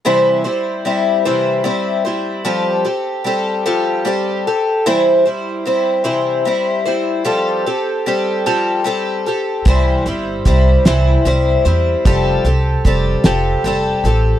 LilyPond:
<<
  \new Staff \with { instrumentName = "Twelve-string acoustic guitar" } { \time 6/8 \key c \major \tempo 4. = 50 <c e g c' e' c''>8 <g c' e' c''>8 <g c' e' c''>8 <c e g c' e' c''>8 <g c' e' c''>8 <g c' e' c''>8 | <f g c' g' a'>8 <c' g' a'>8 <g c' g' a'>8 <f g c' g' a'>8 <g c' g' a'>8 <c' g' a'>8 | <c e g c' e' c''>8 <g c' e' c''>8 <g c' e' c''>8 <c e g c' e' c''>8 <g c' e' c''>8 <g c' e' c''>8 | <f g c' g' a'>8 <c' g' a'>8 <g c' g' a'>8 <f g c' g' a'>8 <g c' g' a'>8 <c' g' a'>8 |
<c e g c' e' c''>8 <g c' e' c''>8 <g c' e' c''>8 <c e g c' e' c''>8 <g c' e' c''>8 <g c' e' c''>8 | <f g c' g' a'>8 <c' g' a'>8 <g c' g' a'>8 <f g c' g' a'>8 <g c' g' a'>8 <c' g' a'>8 | }
  \new Staff \with { instrumentName = "Upright bass" } { \clef bass \time 6/8 \key c \major r2. | r2. | r2. | r2. |
c,8 g,,8 c,8 c,8 c,8 e,8 | f,,8 c,8 f,,8 f,,8 f,,8 a,,8 | }
  \new DrumStaff \with { instrumentName = "Drums" } \drummode { \time 6/8 r4. r4. | r4. r4. | r4. r4. | r4. r4. |
<hh bd>8 hh8 <hh bd>8 <hh sn>8 hh8 hh8 | <hh bd>8 hh8 <hh bd>8 <hh sn>8 hh8 hh8 | }
>>